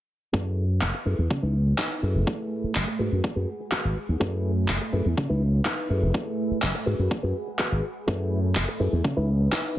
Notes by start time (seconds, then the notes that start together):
0.33 F#2 E4 G#4 A4 B4 G#5 E6, kick
0.81 F#1, kick, clap
0.94 muted clean electric guitar stroke
1.06 F#2 E4 G#4 A4 B4
1.19 E2
1.30 C#3 D#6, muted clean electric guitar stroke, kick
1.42 C#2 D#4 E4 B4
1.67 muted clean electric guitar stroke
1.78 D#4 E4 B4, kick, clap
2.02 F#2 A3 E4 G#4 A4 B4 G#5 B5
2.15 F#1
2.27 kick
2.64 muted slap bass stroke
2.75 F#1, kick, clap
2.88 muted clean electric guitar stroke
2.99 G#2 F#4 G#4 B4 F#5
3.12 F#2
3.24 kick
3.36 F#2 F#4 G#4 B4
3.60 muted clean electric guitar stroke
3.71 F#4 G#4 B4, kick, clap
3.85 G#1
4.09 D#2
4.20 F#2 A3 E4 G#4 A4 B4 E5 G#5, kick
4.68 F#1, kick, clap
4.81 muted clean electric guitar stroke
4.93 F#2 E4 G#4 A4 B4
5.06 E2
5.17 C#3 B4 D#6, muted clean electric guitar stroke, kick
5.29 C#2 D#4 E4 B4
5.54 muted clean electric guitar stroke
5.65 D#4 E4 B4, kick, clap
5.89 F#2 A3 E4 G#4 A4 B4 E5 G#5 B5
6.03 F#1
6.14 kick
6.51 muted slap bass stroke
6.62 F#1, kick, clap
6.75 muted clean electric guitar stroke
6.86 G#2 F#4 G#4 B4 F#5
6.99 F#2
7.11 kick
7.23 F#2 F#4 G#4 B4
7.47 muted clean electric guitar stroke
7.59 F#4 G#4 B4, kick, clap
7.72 G#1
8.07 F#2 A3 E4 G#4 A4 B4 E5 G#5, kick
8.55 F#1, kick, clap
8.68 muted clean electric guitar stroke
8.80 F#2 E4 G#4 A4 B4
8.93 E2
9.04 C#3 B4 D#6, muted clean electric guitar stroke, kick
9.17 C#2 D#4 E4 B4
9.41 muted clean electric guitar stroke
9.52 D#4 E4 B4, kick, clap